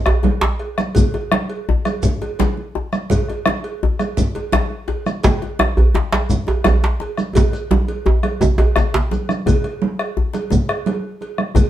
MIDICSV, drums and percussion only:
0, 0, Header, 1, 5, 480
1, 0, Start_track
1, 0, Tempo, 356718
1, 1288, Time_signature, 12, 3, 24, 8
1, 7999, Tempo, 350672
1, 15876, End_track
2, 0, Start_track
2, 0, Title_t, "Bombo"
2, 77, Note_on_c, 9, 37, 89
2, 211, Note_off_c, 9, 37, 0
2, 322, Note_on_c, 9, 37, 29
2, 456, Note_off_c, 9, 37, 0
2, 805, Note_on_c, 9, 37, 32
2, 939, Note_off_c, 9, 37, 0
2, 1046, Note_on_c, 9, 37, 86
2, 1180, Note_off_c, 9, 37, 0
2, 1288, Note_on_c, 9, 43, 98
2, 1422, Note_off_c, 9, 43, 0
2, 1541, Note_on_c, 9, 37, 28
2, 1675, Note_off_c, 9, 37, 0
2, 1770, Note_on_c, 9, 37, 94
2, 1905, Note_off_c, 9, 37, 0
2, 2494, Note_on_c, 9, 37, 75
2, 2629, Note_off_c, 9, 37, 0
2, 2740, Note_on_c, 9, 43, 93
2, 2875, Note_off_c, 9, 43, 0
2, 3939, Note_on_c, 9, 37, 66
2, 4073, Note_off_c, 9, 37, 0
2, 4176, Note_on_c, 9, 43, 86
2, 4310, Note_off_c, 9, 43, 0
2, 4419, Note_on_c, 9, 37, 27
2, 4554, Note_off_c, 9, 37, 0
2, 4650, Note_on_c, 9, 37, 97
2, 4784, Note_off_c, 9, 37, 0
2, 5375, Note_on_c, 9, 37, 68
2, 5509, Note_off_c, 9, 37, 0
2, 5617, Note_on_c, 9, 43, 90
2, 5752, Note_off_c, 9, 43, 0
2, 6097, Note_on_c, 9, 37, 91
2, 6232, Note_off_c, 9, 37, 0
2, 6816, Note_on_c, 9, 37, 67
2, 6950, Note_off_c, 9, 37, 0
2, 7060, Note_on_c, 9, 43, 96
2, 7195, Note_off_c, 9, 43, 0
2, 7291, Note_on_c, 9, 37, 28
2, 7425, Note_off_c, 9, 37, 0
2, 7531, Note_on_c, 9, 37, 96
2, 7666, Note_off_c, 9, 37, 0
2, 8246, Note_on_c, 9, 37, 71
2, 8383, Note_off_c, 9, 37, 0
2, 8479, Note_on_c, 9, 43, 97
2, 8616, Note_off_c, 9, 43, 0
2, 8956, Note_on_c, 9, 37, 87
2, 9093, Note_off_c, 9, 37, 0
2, 9683, Note_on_c, 9, 37, 68
2, 9820, Note_off_c, 9, 37, 0
2, 9929, Note_on_c, 9, 37, 29
2, 9929, Note_on_c, 9, 43, 90
2, 10066, Note_off_c, 9, 37, 0
2, 10066, Note_off_c, 9, 43, 0
2, 11130, Note_on_c, 9, 37, 66
2, 11267, Note_off_c, 9, 37, 0
2, 11368, Note_on_c, 9, 37, 30
2, 11368, Note_on_c, 9, 43, 90
2, 11505, Note_off_c, 9, 37, 0
2, 11505, Note_off_c, 9, 43, 0
2, 11848, Note_on_c, 9, 37, 86
2, 11985, Note_off_c, 9, 37, 0
2, 12579, Note_on_c, 9, 37, 67
2, 12715, Note_off_c, 9, 37, 0
2, 12813, Note_on_c, 9, 37, 33
2, 12813, Note_on_c, 9, 43, 99
2, 12949, Note_off_c, 9, 37, 0
2, 12949, Note_off_c, 9, 43, 0
2, 13061, Note_on_c, 9, 37, 29
2, 13198, Note_off_c, 9, 37, 0
2, 13542, Note_on_c, 9, 37, 73
2, 13679, Note_off_c, 9, 37, 0
2, 14021, Note_on_c, 9, 37, 29
2, 14158, Note_off_c, 9, 37, 0
2, 14254, Note_on_c, 9, 43, 97
2, 14391, Note_off_c, 9, 43, 0
2, 14497, Note_on_c, 9, 37, 81
2, 14634, Note_off_c, 9, 37, 0
2, 14741, Note_on_c, 9, 37, 32
2, 14878, Note_off_c, 9, 37, 0
2, 15443, Note_on_c, 9, 37, 72
2, 15580, Note_off_c, 9, 37, 0
2, 15678, Note_on_c, 9, 37, 34
2, 15678, Note_on_c, 9, 43, 112
2, 15814, Note_off_c, 9, 37, 0
2, 15814, Note_off_c, 9, 43, 0
2, 15876, End_track
3, 0, Start_track
3, 0, Title_t, "Djembe"
3, 85, Note_on_c, 9, 63, 113
3, 220, Note_off_c, 9, 63, 0
3, 311, Note_on_c, 9, 62, 25
3, 311, Note_on_c, 9, 64, 78
3, 445, Note_off_c, 9, 62, 0
3, 445, Note_off_c, 9, 64, 0
3, 557, Note_on_c, 9, 62, 117
3, 691, Note_off_c, 9, 62, 0
3, 1053, Note_on_c, 9, 62, 55
3, 1187, Note_off_c, 9, 62, 0
3, 1299, Note_on_c, 9, 64, 73
3, 1434, Note_off_c, 9, 64, 0
3, 1532, Note_on_c, 9, 63, 61
3, 1667, Note_off_c, 9, 63, 0
3, 1777, Note_on_c, 9, 62, 76
3, 1912, Note_off_c, 9, 62, 0
3, 2270, Note_on_c, 9, 63, 77
3, 2270, Note_on_c, 9, 64, 78
3, 2405, Note_off_c, 9, 63, 0
3, 2405, Note_off_c, 9, 64, 0
3, 2982, Note_on_c, 9, 63, 59
3, 3116, Note_off_c, 9, 63, 0
3, 3226, Note_on_c, 9, 62, 70
3, 3226, Note_on_c, 9, 64, 67
3, 3360, Note_off_c, 9, 62, 0
3, 3360, Note_off_c, 9, 64, 0
3, 3704, Note_on_c, 9, 62, 22
3, 3704, Note_on_c, 9, 63, 71
3, 3839, Note_off_c, 9, 62, 0
3, 3839, Note_off_c, 9, 63, 0
3, 4184, Note_on_c, 9, 64, 64
3, 4318, Note_off_c, 9, 64, 0
3, 4442, Note_on_c, 9, 63, 49
3, 4576, Note_off_c, 9, 63, 0
3, 4671, Note_on_c, 9, 62, 67
3, 4806, Note_off_c, 9, 62, 0
3, 5154, Note_on_c, 9, 63, 73
3, 5154, Note_on_c, 9, 64, 72
3, 5288, Note_off_c, 9, 63, 0
3, 5288, Note_off_c, 9, 64, 0
3, 5864, Note_on_c, 9, 63, 62
3, 5999, Note_off_c, 9, 63, 0
3, 6096, Note_on_c, 9, 62, 76
3, 6096, Note_on_c, 9, 64, 77
3, 6231, Note_off_c, 9, 62, 0
3, 6231, Note_off_c, 9, 64, 0
3, 6565, Note_on_c, 9, 62, 24
3, 6565, Note_on_c, 9, 63, 81
3, 6700, Note_off_c, 9, 62, 0
3, 6700, Note_off_c, 9, 63, 0
3, 7055, Note_on_c, 9, 62, 104
3, 7061, Note_on_c, 9, 64, 78
3, 7189, Note_off_c, 9, 62, 0
3, 7195, Note_off_c, 9, 64, 0
3, 7299, Note_on_c, 9, 62, 26
3, 7299, Note_on_c, 9, 63, 60
3, 7434, Note_off_c, 9, 62, 0
3, 7434, Note_off_c, 9, 63, 0
3, 7526, Note_on_c, 9, 62, 78
3, 7532, Note_on_c, 9, 63, 74
3, 7661, Note_off_c, 9, 62, 0
3, 7667, Note_off_c, 9, 63, 0
3, 7765, Note_on_c, 9, 64, 83
3, 7900, Note_off_c, 9, 64, 0
3, 8000, Note_on_c, 9, 63, 78
3, 8000, Note_on_c, 9, 64, 75
3, 8008, Note_on_c, 9, 62, 81
3, 8137, Note_off_c, 9, 63, 0
3, 8137, Note_off_c, 9, 64, 0
3, 8145, Note_off_c, 9, 62, 0
3, 8246, Note_on_c, 9, 62, 98
3, 8383, Note_off_c, 9, 62, 0
3, 8716, Note_on_c, 9, 63, 51
3, 8730, Note_off_c, 9, 63, 0
3, 8730, Note_on_c, 9, 63, 85
3, 8867, Note_off_c, 9, 63, 0
3, 8957, Note_on_c, 9, 62, 69
3, 8957, Note_on_c, 9, 64, 70
3, 8970, Note_off_c, 9, 64, 0
3, 8970, Note_on_c, 9, 64, 83
3, 9094, Note_off_c, 9, 62, 0
3, 9107, Note_off_c, 9, 64, 0
3, 9221, Note_on_c, 9, 62, 85
3, 9358, Note_off_c, 9, 62, 0
3, 9444, Note_on_c, 9, 62, 21
3, 9444, Note_on_c, 9, 63, 69
3, 9581, Note_off_c, 9, 62, 0
3, 9581, Note_off_c, 9, 63, 0
3, 9936, Note_on_c, 9, 64, 68
3, 9944, Note_on_c, 9, 63, 98
3, 10073, Note_off_c, 9, 64, 0
3, 10080, Note_off_c, 9, 63, 0
3, 10166, Note_on_c, 9, 62, 20
3, 10166, Note_on_c, 9, 63, 52
3, 10303, Note_off_c, 9, 62, 0
3, 10303, Note_off_c, 9, 63, 0
3, 10413, Note_on_c, 9, 63, 93
3, 10417, Note_on_c, 9, 62, 62
3, 10550, Note_off_c, 9, 63, 0
3, 10554, Note_off_c, 9, 62, 0
3, 10665, Note_on_c, 9, 62, 23
3, 10802, Note_off_c, 9, 62, 0
3, 10891, Note_on_c, 9, 64, 70
3, 10898, Note_on_c, 9, 63, 107
3, 11028, Note_off_c, 9, 64, 0
3, 11035, Note_off_c, 9, 63, 0
3, 11377, Note_on_c, 9, 63, 95
3, 11514, Note_off_c, 9, 63, 0
3, 11607, Note_on_c, 9, 63, 108
3, 11614, Note_off_c, 9, 63, 0
3, 11614, Note_on_c, 9, 63, 58
3, 11751, Note_off_c, 9, 63, 0
3, 11856, Note_on_c, 9, 62, 66
3, 11856, Note_on_c, 9, 64, 75
3, 11993, Note_off_c, 9, 62, 0
3, 11993, Note_off_c, 9, 64, 0
3, 12102, Note_on_c, 9, 62, 103
3, 12239, Note_off_c, 9, 62, 0
3, 12337, Note_on_c, 9, 62, 24
3, 12337, Note_on_c, 9, 63, 74
3, 12474, Note_off_c, 9, 62, 0
3, 12474, Note_off_c, 9, 63, 0
3, 12820, Note_on_c, 9, 63, 66
3, 12820, Note_on_c, 9, 64, 64
3, 12957, Note_off_c, 9, 63, 0
3, 12957, Note_off_c, 9, 64, 0
3, 13782, Note_on_c, 9, 64, 72
3, 13919, Note_off_c, 9, 64, 0
3, 14008, Note_on_c, 9, 62, 49
3, 14145, Note_off_c, 9, 62, 0
3, 14241, Note_on_c, 9, 63, 68
3, 14378, Note_off_c, 9, 63, 0
3, 15208, Note_on_c, 9, 62, 23
3, 15345, Note_off_c, 9, 62, 0
3, 15669, Note_on_c, 9, 63, 67
3, 15669, Note_on_c, 9, 64, 73
3, 15806, Note_off_c, 9, 63, 0
3, 15806, Note_off_c, 9, 64, 0
3, 15876, End_track
4, 0, Start_track
4, 0, Title_t, "Shekere"
4, 1060, Note_on_c, 9, 82, 16
4, 1195, Note_off_c, 9, 82, 0
4, 1297, Note_on_c, 9, 82, 63
4, 1432, Note_off_c, 9, 82, 0
4, 2497, Note_on_c, 9, 82, 18
4, 2632, Note_off_c, 9, 82, 0
4, 2725, Note_on_c, 9, 82, 60
4, 2859, Note_off_c, 9, 82, 0
4, 3224, Note_on_c, 9, 82, 18
4, 3358, Note_off_c, 9, 82, 0
4, 3940, Note_on_c, 9, 82, 18
4, 4074, Note_off_c, 9, 82, 0
4, 4186, Note_on_c, 9, 82, 61
4, 4321, Note_off_c, 9, 82, 0
4, 5382, Note_on_c, 9, 82, 18
4, 5516, Note_off_c, 9, 82, 0
4, 5622, Note_on_c, 9, 82, 60
4, 5756, Note_off_c, 9, 82, 0
4, 6090, Note_on_c, 9, 82, 19
4, 6225, Note_off_c, 9, 82, 0
4, 6815, Note_on_c, 9, 82, 19
4, 6949, Note_off_c, 9, 82, 0
4, 7049, Note_on_c, 9, 82, 64
4, 7183, Note_off_c, 9, 82, 0
4, 8246, Note_on_c, 9, 82, 19
4, 8383, Note_off_c, 9, 82, 0
4, 8481, Note_on_c, 9, 82, 63
4, 8618, Note_off_c, 9, 82, 0
4, 8968, Note_on_c, 9, 82, 20
4, 9105, Note_off_c, 9, 82, 0
4, 9694, Note_on_c, 9, 82, 21
4, 9831, Note_off_c, 9, 82, 0
4, 9940, Note_on_c, 9, 82, 63
4, 10077, Note_off_c, 9, 82, 0
4, 10189, Note_on_c, 9, 82, 20
4, 10326, Note_off_c, 9, 82, 0
4, 11383, Note_on_c, 9, 82, 58
4, 11520, Note_off_c, 9, 82, 0
4, 11866, Note_on_c, 9, 82, 19
4, 12002, Note_off_c, 9, 82, 0
4, 12105, Note_on_c, 9, 82, 18
4, 12241, Note_off_c, 9, 82, 0
4, 12357, Note_on_c, 9, 82, 18
4, 12494, Note_off_c, 9, 82, 0
4, 12594, Note_on_c, 9, 82, 18
4, 12731, Note_off_c, 9, 82, 0
4, 12839, Note_on_c, 9, 82, 57
4, 12976, Note_off_c, 9, 82, 0
4, 14019, Note_on_c, 9, 82, 19
4, 14156, Note_off_c, 9, 82, 0
4, 14261, Note_on_c, 9, 82, 56
4, 14398, Note_off_c, 9, 82, 0
4, 15688, Note_on_c, 9, 82, 61
4, 15825, Note_off_c, 9, 82, 0
4, 15876, End_track
5, 0, Start_track
5, 0, Title_t, "Drums"
5, 84, Note_on_c, 9, 56, 52
5, 218, Note_off_c, 9, 56, 0
5, 320, Note_on_c, 9, 56, 48
5, 327, Note_on_c, 9, 63, 82
5, 454, Note_off_c, 9, 56, 0
5, 461, Note_off_c, 9, 63, 0
5, 571, Note_on_c, 9, 63, 24
5, 706, Note_off_c, 9, 63, 0
5, 800, Note_on_c, 9, 56, 43
5, 935, Note_off_c, 9, 56, 0
5, 1048, Note_on_c, 9, 63, 68
5, 1183, Note_off_c, 9, 63, 0
5, 1275, Note_on_c, 9, 56, 67
5, 1294, Note_on_c, 9, 63, 24
5, 1294, Note_on_c, 9, 64, 70
5, 1409, Note_off_c, 9, 56, 0
5, 1428, Note_off_c, 9, 63, 0
5, 1428, Note_off_c, 9, 64, 0
5, 1536, Note_on_c, 9, 56, 46
5, 1671, Note_off_c, 9, 56, 0
5, 1771, Note_on_c, 9, 63, 74
5, 1906, Note_off_c, 9, 63, 0
5, 2012, Note_on_c, 9, 56, 48
5, 2147, Note_off_c, 9, 56, 0
5, 2492, Note_on_c, 9, 56, 52
5, 2499, Note_on_c, 9, 63, 59
5, 2627, Note_off_c, 9, 56, 0
5, 2634, Note_off_c, 9, 63, 0
5, 2729, Note_on_c, 9, 64, 82
5, 2863, Note_off_c, 9, 64, 0
5, 2978, Note_on_c, 9, 63, 24
5, 2985, Note_on_c, 9, 56, 52
5, 3113, Note_off_c, 9, 63, 0
5, 3120, Note_off_c, 9, 56, 0
5, 3217, Note_on_c, 9, 56, 49
5, 3223, Note_on_c, 9, 63, 78
5, 3351, Note_off_c, 9, 56, 0
5, 3357, Note_off_c, 9, 63, 0
5, 3464, Note_on_c, 9, 63, 24
5, 3598, Note_off_c, 9, 63, 0
5, 3936, Note_on_c, 9, 63, 61
5, 4070, Note_off_c, 9, 63, 0
5, 4169, Note_on_c, 9, 63, 23
5, 4169, Note_on_c, 9, 64, 76
5, 4183, Note_on_c, 9, 56, 63
5, 4303, Note_off_c, 9, 63, 0
5, 4303, Note_off_c, 9, 64, 0
5, 4317, Note_off_c, 9, 56, 0
5, 4433, Note_on_c, 9, 56, 46
5, 4568, Note_off_c, 9, 56, 0
5, 4653, Note_on_c, 9, 63, 71
5, 4788, Note_off_c, 9, 63, 0
5, 4900, Note_on_c, 9, 56, 49
5, 5034, Note_off_c, 9, 56, 0
5, 5375, Note_on_c, 9, 63, 57
5, 5378, Note_on_c, 9, 56, 50
5, 5510, Note_off_c, 9, 63, 0
5, 5512, Note_off_c, 9, 56, 0
5, 5613, Note_on_c, 9, 64, 74
5, 5748, Note_off_c, 9, 64, 0
5, 5854, Note_on_c, 9, 56, 50
5, 5854, Note_on_c, 9, 63, 22
5, 5989, Note_off_c, 9, 56, 0
5, 5989, Note_off_c, 9, 63, 0
5, 6088, Note_on_c, 9, 63, 75
5, 6094, Note_on_c, 9, 56, 49
5, 6222, Note_off_c, 9, 63, 0
5, 6228, Note_off_c, 9, 56, 0
5, 6328, Note_on_c, 9, 63, 25
5, 6462, Note_off_c, 9, 63, 0
5, 6563, Note_on_c, 9, 56, 44
5, 6698, Note_off_c, 9, 56, 0
5, 6813, Note_on_c, 9, 63, 59
5, 6947, Note_off_c, 9, 63, 0
5, 7044, Note_on_c, 9, 56, 67
5, 7054, Note_on_c, 9, 63, 22
5, 7054, Note_on_c, 9, 64, 71
5, 7179, Note_off_c, 9, 56, 0
5, 7188, Note_off_c, 9, 63, 0
5, 7188, Note_off_c, 9, 64, 0
5, 7294, Note_on_c, 9, 56, 46
5, 7429, Note_off_c, 9, 56, 0
5, 7525, Note_on_c, 9, 63, 69
5, 7659, Note_off_c, 9, 63, 0
5, 7777, Note_on_c, 9, 56, 46
5, 7911, Note_off_c, 9, 56, 0
5, 8243, Note_on_c, 9, 63, 55
5, 8250, Note_on_c, 9, 56, 49
5, 8380, Note_off_c, 9, 63, 0
5, 8386, Note_off_c, 9, 56, 0
5, 8492, Note_on_c, 9, 64, 69
5, 8628, Note_off_c, 9, 64, 0
5, 8732, Note_on_c, 9, 63, 22
5, 8739, Note_on_c, 9, 56, 52
5, 8869, Note_off_c, 9, 63, 0
5, 8876, Note_off_c, 9, 56, 0
5, 8966, Note_on_c, 9, 63, 76
5, 8982, Note_on_c, 9, 56, 52
5, 9102, Note_off_c, 9, 63, 0
5, 9119, Note_off_c, 9, 56, 0
5, 9207, Note_on_c, 9, 63, 23
5, 9344, Note_off_c, 9, 63, 0
5, 9463, Note_on_c, 9, 56, 50
5, 9600, Note_off_c, 9, 56, 0
5, 9690, Note_on_c, 9, 63, 60
5, 9827, Note_off_c, 9, 63, 0
5, 9926, Note_on_c, 9, 56, 70
5, 9928, Note_on_c, 9, 63, 23
5, 9928, Note_on_c, 9, 64, 69
5, 10063, Note_off_c, 9, 56, 0
5, 10065, Note_off_c, 9, 63, 0
5, 10065, Note_off_c, 9, 64, 0
5, 10174, Note_on_c, 9, 56, 54
5, 10311, Note_off_c, 9, 56, 0
5, 10414, Note_on_c, 9, 63, 74
5, 10551, Note_off_c, 9, 63, 0
5, 10654, Note_on_c, 9, 56, 53
5, 10655, Note_on_c, 9, 63, 23
5, 10791, Note_off_c, 9, 56, 0
5, 10792, Note_off_c, 9, 63, 0
5, 11129, Note_on_c, 9, 63, 52
5, 11134, Note_on_c, 9, 56, 58
5, 11266, Note_off_c, 9, 63, 0
5, 11271, Note_off_c, 9, 56, 0
5, 11372, Note_on_c, 9, 64, 74
5, 11509, Note_off_c, 9, 64, 0
5, 11619, Note_on_c, 9, 56, 58
5, 11755, Note_off_c, 9, 56, 0
5, 11853, Note_on_c, 9, 56, 50
5, 11866, Note_on_c, 9, 64, 43
5, 11990, Note_off_c, 9, 56, 0
5, 12003, Note_off_c, 9, 64, 0
5, 12103, Note_on_c, 9, 64, 50
5, 12240, Note_off_c, 9, 64, 0
5, 12342, Note_on_c, 9, 56, 50
5, 12346, Note_on_c, 9, 63, 53
5, 12479, Note_off_c, 9, 56, 0
5, 12483, Note_off_c, 9, 63, 0
5, 12580, Note_on_c, 9, 63, 67
5, 12717, Note_off_c, 9, 63, 0
5, 12823, Note_on_c, 9, 56, 71
5, 12825, Note_on_c, 9, 63, 23
5, 12825, Note_on_c, 9, 64, 71
5, 12960, Note_off_c, 9, 56, 0
5, 12962, Note_off_c, 9, 63, 0
5, 12962, Note_off_c, 9, 64, 0
5, 13060, Note_on_c, 9, 56, 49
5, 13063, Note_on_c, 9, 63, 24
5, 13197, Note_off_c, 9, 56, 0
5, 13200, Note_off_c, 9, 63, 0
5, 13299, Note_on_c, 9, 63, 75
5, 13436, Note_off_c, 9, 63, 0
5, 13542, Note_on_c, 9, 56, 46
5, 13679, Note_off_c, 9, 56, 0
5, 14019, Note_on_c, 9, 63, 51
5, 14021, Note_on_c, 9, 56, 55
5, 14156, Note_off_c, 9, 63, 0
5, 14158, Note_off_c, 9, 56, 0
5, 14256, Note_on_c, 9, 64, 72
5, 14392, Note_off_c, 9, 64, 0
5, 14493, Note_on_c, 9, 56, 52
5, 14630, Note_off_c, 9, 56, 0
5, 14729, Note_on_c, 9, 63, 69
5, 14742, Note_on_c, 9, 56, 52
5, 14866, Note_off_c, 9, 63, 0
5, 14879, Note_off_c, 9, 56, 0
5, 15204, Note_on_c, 9, 63, 19
5, 15219, Note_on_c, 9, 56, 44
5, 15341, Note_off_c, 9, 63, 0
5, 15356, Note_off_c, 9, 56, 0
5, 15443, Note_on_c, 9, 63, 51
5, 15580, Note_off_c, 9, 63, 0
5, 15681, Note_on_c, 9, 63, 21
5, 15681, Note_on_c, 9, 64, 70
5, 15684, Note_on_c, 9, 56, 69
5, 15818, Note_off_c, 9, 63, 0
5, 15818, Note_off_c, 9, 64, 0
5, 15821, Note_off_c, 9, 56, 0
5, 15876, End_track
0, 0, End_of_file